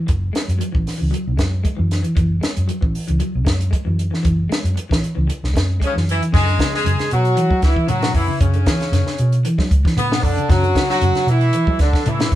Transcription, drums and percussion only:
0.08 kick, closed hi-hat
0.35 snare, closed hi-hat
0.49 closed hi-hat
0.61 closed hi-hat
0.75 kick
0.87 snare, open hi-hat
1.14 closed hi-hat
1.39 kick, snare, closed hi-hat
1.65 kick, closed hi-hat
1.91 snare, closed hi-hat
2.04 closed hi-hat
2.17 kick, closed hi-hat
2.43 snare, closed hi-hat
2.57 closed hi-hat
2.69 closed hi-hat
2.82 kick
2.95 open hi-hat
3.08 closed hi-hat
3.20 closed hi-hat
3.46 kick, snare, closed hi-hat
3.61 closed hi-hat
3.73 kick, closed hi-hat
3.99 closed hi-hat
4.14 snare
4.25 kick, closed hi-hat
4.52 snare, closed hi-hat
4.65 closed hi-hat
4.77 closed hi-hat
4.91 kick, snare
5.04 closed hi-hat
5.30 closed hi-hat
5.44 snare
5.56 kick, snare, closed hi-hat
5.81 kick, closed hi-hat
5.97 snare
6.09 closed hi-hat
6.22 closed hi-hat
6.34 kick, snare, crash
6.48 closed hi-hat
6.59 kick, snare, closed hi-hat
6.74 snare
6.86 closed hi-hat
6.99 snare, closed hi-hat
7.11 closed hi-hat
7.25 closed hi-hat
7.37 closed hi-hat
7.50 kick
7.62 kick, snare, closed hi-hat
7.76 kick
7.88 closed hi-hat
8.02 snare, closed hi-hat
8.14 kick, open hi-hat
8.40 kick, closed hi-hat
8.54 closed hi-hat
8.66 kick, snare, closed hi-hat
8.81 snare, closed hi-hat
8.93 snare, closed hi-hat
9.07 snare
9.18 closed hi-hat
9.32 closed hi-hat
9.45 closed hi-hat
9.59 kick, snare
9.71 kick, closed hi-hat
9.85 kick, snare
9.97 closed hi-hat
10.12 snare
10.23 kick, open hi-hat
10.38 closed hi-hat
10.50 kick, snare, closed hi-hat
10.64 closed hi-hat
10.75 kick, snare, closed hi-hat
10.90 snare
11.01 closed hi-hat
11.15 snare, closed hi-hat
11.28 closed hi-hat
11.41 closed hi-hat
11.53 closed hi-hat
11.67 kick
11.79 kick, snare, closed hi-hat
11.93 kick, snare
12.06 closed hi-hat
12.20 snare, closed hi-hat
12.32 kick, open hi-hat

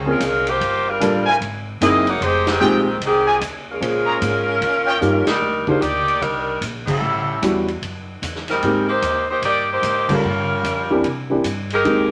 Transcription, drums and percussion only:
0.20 kick, hi-hat pedal, ride
0.47 ride
0.61 kick, ride
1.01 kick, hi-hat pedal, ride
1.41 kick, ride
1.81 kick, hi-hat pedal, ride
2.07 ride
2.21 kick, ride
2.47 snare, ride
2.61 hi-hat pedal
3.01 kick, ride
3.41 kick, hi-hat pedal, ride
3.81 kick, ride
4.21 kick, hi-hat pedal, ride
4.61 kick, ride
5.01 hi-hat pedal
5.27 snare, ride
5.67 kick
5.82 kick, hi-hat pedal, ride
6.08 ride
6.22 kick, ride
6.62 kick, hi-hat pedal, ride
6.87 kick, crash
7.42 kick, hi-hat pedal, ride
7.68 ride
7.82 kick, ride
8.22 kick, hi-hat pedal, ride
8.36 snare
8.48 snare, ride
8.62 kick, ride
9.02 kick, hi-hat pedal, ride
9.42 kick, ride
9.83 kick, hi-hat pedal, ride
10.09 kick, crash
10.64 kick, hi-hat pedal, ride
11.04 kick, ride
11.44 kick, hi-hat pedal, ride
11.70 ride
11.85 kick, ride

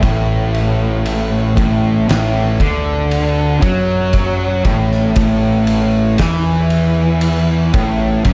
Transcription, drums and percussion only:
0.03 kick, ride
0.54 ride
1.06 ride
1.57 kick, ride
2.09 snare, ride
2.60 kick, ride
3.11 ride
3.62 kick, ride
4.13 kick, ride
4.65 kick, ride
4.91 snare
5.16 kick, ride
5.67 ride
6.18 kick, snare, ride
6.70 ride
7.21 ride
7.74 kick, ride
8.25 kick, ride

